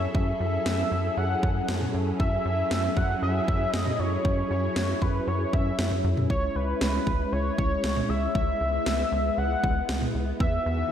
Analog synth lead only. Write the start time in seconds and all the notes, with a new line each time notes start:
0.15 E5
1.17 F#5
2.20 E5
2.97 F#5
3.23 E5
3.73 D#5
3.99 C#5
4.51 C#5
5.02 B4
5.27 C#5
5.53 E5
6.30 C#5
6.56 B4
7.32 C#5
7.58 C#5
8.09 E5
8.35 E5
9.38 F#5
10.40 E5